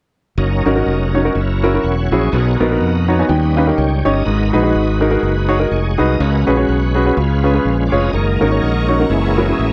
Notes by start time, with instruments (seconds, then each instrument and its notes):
0.38 fingered electric bass F#1, tonewheel organ F#3 C#4 D#4 A#4
0.66 fingered electric bass G#1, upright piano C#4 D#4 F#4 A#4
0.76 upright piano C#4 D#4 F#4 A#4
0.86 fingered electric bass F1
1.14 upright piano C#4 D#4 F#4 C#5
1.25 upright piano C#4 D#4 F#4 A#4
1.35 fingered electric bass F#1, tonewheel organ F#3 C#4 E4 G#4
1.41 tonewheel organ A#4
1.63 upright piano C#4 E4 F#4 A#4
1.74 upright piano C#4 E4 F#4 A#4
1.83 fingered electric bass E1, tonewheel organ C#5 F#5
2.11 fingered electric bass A#1, upright piano C#4 E4 F#4 G#4, tonewheel organ G#4 C#5
2.32 fingered electric bass B1, upright piano B2, tonewheel organ B3 D#4 F#4 A4
2.38 tonewheel organ A#4
2.60 fingered electric bass A#1, upright piano B3 D#4 F#4 A#4
2.71 upright piano B3 D#4 F#4 A#4
2.81 fingered electric bass F2
3.08 upright piano B3 D#4 F#4 C#5 A#5
3.19 upright piano B3 D#4 F#4 C#5 G#5
3.29 fingered electric bass D#2, upright piano D#3 G5, tonewheel organ G3 C#4 D#4 B4
3.57 upright piano C#4 D#4 G4 B4 F5
3.67 upright piano C#4 D#4 G4 A#4
3.77 fingered electric bass C#2, tonewheel organ C#5 G5, upright piano G5
4.05 fingered electric bass G1, upright piano C#4 D#4 G4 C#5 D#5, tonewheel organ A#4 D#5
4.25 fingered electric bass G#1, upright piano G#2, tonewheel organ G#3 D#4 F#4 B4
4.53 fingered electric bass A#1, upright piano D#4 F#4 G#4 B4
4.63 upright piano D#4 F#4 G#4 B4
4.75 fingered electric bass G#1
5.01 upright piano D#4 F#4 G#4 A#4
5.11 upright piano D#4 F#4 G#4 A#4
5.23 fingered electric bass F#1
5.48 upright piano D#4 F#4 G#4 C#5
5.59 upright piano D#4 F#4 G#4 A#4
5.71 fingered electric bass F1, tonewheel organ G#4 C#5
5.98 fingered electric bass C2, upright piano D#4 F#4 G#4 B4, tonewheel organ A#4 D#5
6.19 fingered electric bass C#2, upright piano C#3, tonewheel organ G#3 C#4 F#4 B4
6.47 fingered electric bass A#1, upright piano C#4 F#4 G#4 B4
6.57 upright piano C#4 F#4 G#4 C#5
6.69 fingered electric bass B1
6.95 upright piano C#4 F#4 G#4 B4
7.06 upright piano C#4 F#4 G#4 B4
7.16 fingered electric bass C#2, upright piano C#3, tonewheel organ G#3 C#4 F4 B4
7.44 upright piano C#4 F4 G#4 B4
7.54 upright piano C#4 F4 G#4 B4
7.65 fingered electric bass A#1
7.86 tonewheel organ D5
7.92 fingered electric bass F1, upright piano C#4 F4 G#4 C#5, tonewheel organ D#5
8.12 fingered electric bass F#1, tonewheel organ D#3 G#3 A#3 A#4 C#5, string section D#5 F#5 A#5 C#6
8.41 fingered electric bass G#1, upright piano C#4 D#4 F#4 A#4, tonewheel organ A#4 C#5
8.51 upright piano C#4 D#4 F#4 C#5
8.62 fingered electric bass A#1
8.89 upright piano C#4 D#4 F#4 C#5, tonewheel organ A#4
9.00 upright piano C#4 D#4 F#4 A#4
9.09 fingered electric bass F#1, tonewheel organ E3 G#3 A#3 C#4 E4 G#4, string section E5
9.38 upright piano C#4 E4 F#4 A#4
9.48 upright piano C#4 E4 F#4 G#4
9.59 fingered electric bass A1